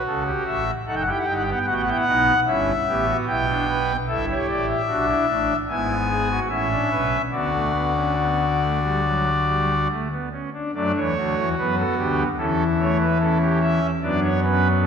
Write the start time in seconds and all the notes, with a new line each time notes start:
Already playing: F#4
0.06 C#2 C#3 A4
0.27 G4
0.46 A1 A2 E5
0.86 F#1 F#2 D#4 A4 F#5
0.95 G5
1.01 F#5
1.06 E4 G4 G5
1.18 F#5
1.25 G1 G2 D#4 G5
1.35 F#5
1.42 G5
1.48 B3 F#5
1.58 G5
1.65 A1 A2 F#4 F#5
1.73 G5
1.81 F#5
1.86 E4 G5
1.96 F#5
2.07 B1 B2 D#4
2.46 G1 G2 C#4 E4 E5
2.88 A1 A2 B3 G4
3.07 F#4
3.27 B1 B2 E4 G5
3.49 D4
3.68 B4
4.08 G1 G2 E4 A4 E5
4.30 G4 C#5
4.49 A1 A2 D5
4.69 E5
4.88 B1 B2 D4 F#4
5.09 E4
5.27 A1 A2 D4
5.69 G#1 G#2 B3 E4 G#5
6.10 G#4
6.30 F#4
6.49 A1 A2 C#4 E4 E5
6.71 D4
6.90 B1 B2 B4
7.31 D2 D3 B3 F#4 D5
7.53 A3
7.73 B3
7.96 C#4
8.19 B3
8.61 A3
8.83 G3
9.03 F#3
9.46 G3
9.90 A3
10.11 B3
10.32 C#4
10.54 D4
10.74 F#2 F#3 A3 D4 D5
10.96 E2 E3 C#5
11.17 D2 D3 F#4
11.38 E2 E3
11.58 F#2 F#3 B3 B4
11.78 A4
11.98 D2 D3 G4
12.38 E2 E3 C#4 E4 A4
12.79 A3 C#5
13.00 B4
13.20 C#4 A4
13.41 G4
13.61 E5
14.02 F#2 F#3 B3 D4 D5
14.22 C#5
14.42 C#4 B4
14.82 D4 A4